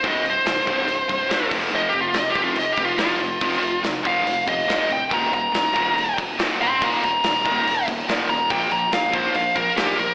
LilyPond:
<<
  \new Staff \with { instrumentName = "Lead electric guitar" } { \time 4/4 \key f \dorian \tempo 4 = 142 ees''8 c''2. r8 | \tuplet 3/2 { ees''8 g'8 f'8 ees''8 g'8 f'8 ees''8 g'8 f'8 } f'4~ | f'4 r8 f''4 ees''4 g''8 | bes''8 bes''2 r4 <g'' c'''>8 |
<f'' bes''>8 bes''2 r4 bes''8 | g''8 bes''8 f''8 c''8 f''8 bes'8 g'8 bes'8 | }
  \new Staff \with { instrumentName = "Overdriven electric guitar" } { \clef bass \time 4/4 \key f \dorian <c, g, c>8 <c, g,>8 <c, g,>8 <c, g, c>8 <c, g,>8 <c, g,>8 <c, g, c>8 <f, c f>8 | <f, c f>8 <f, c>8 <f, c>8 <f, c f>8 <f, c>8 <f, c>8 <f, c f>8 <f, c>8 | <f, c f>8 <f, c>8 <f, c>8 <f, c f>8 <f, c>8 <f, c>8 <f, c f>8 <f, c>8 | <ees, bes, ees>8 <ees, bes,>8 <ees, bes,>8 <ees, bes, ees>8 <ees, bes,>8 <ees, bes,>8 <ees, bes, ees>8 <ees, bes,>8 |
<ees, bes, ees>8 <ees, bes,>8 <ees, bes,>8 <ees, bes, ees>8 <ees, bes,>8 <ees, bes,>8 <ees, bes, ees>8 <ees, bes,>8 | <bes, f bes>8 <bes, f>8 <bes, f>8 <bes, f bes>8 <bes, f>8 <bes, f>8 <bes, f bes>8 <bes, f>8 | }
  \new Staff \with { instrumentName = "Picked electric bass" } { \clef bass \time 4/4 \key f \dorian c,,8 c,,8 c,,8 c,,8 c,,8 c,,8 c,,8 f,,8 | f,,8 f,,8 f,,8 f,,8 f,,8 f,,8 f,,8 f,,8 | f,,8 f,,8 f,,8 f,,8 f,,8 f,,8 f,,8 d,,8 | ees,,8 ees,,8 ees,,8 ees,,8 ees,,8 ees,,8 ees,,8 ees,,8 |
ees,,8 ees,,8 ees,,8 ees,,8 ees,,8 ees,,8 ees,,8 ees,,8 | bes,,8 bes,,8 bes,,8 bes,,8 bes,,8 bes,,8 bes,,8 bes,,8 | }
  \new DrumStaff \with { instrumentName = "Drums" } \drummode { \time 4/4 <cymc bd>8 cymc8 <cymc sn>8 <cymc bd>8 cymc8 <cymc bd>8 <cymc sn>8 <cymc bd>8 | cymc8 cymc8 <cymc sn>8 <cymc bd>8 cymc8 <cymc bd>8 <cymc sn>8 cymc8 | <cymc bd>8 cymc8 <cymc sn>8 <cymc bd>8 cymc8 <cymc bd>8 <cymc sn>8 cymc8 | <cymc bd>8 cymc8 <cymc sn>8 <cymc bd>8 cymc8 <cymc bd>8 <cymc sn>8 cymc8 |
<cymc bd>8 cymc8 <cymc sn>8 <cymc bd>8 cymc8 <cymc bd>8 <cymc sn>8 cymc8 | <cymc bd>8 cymc8 <cymc sn>8 <cymc bd>8 cymc8 <cymc bd>8 <cymc sn>8 cymc8 | }
>>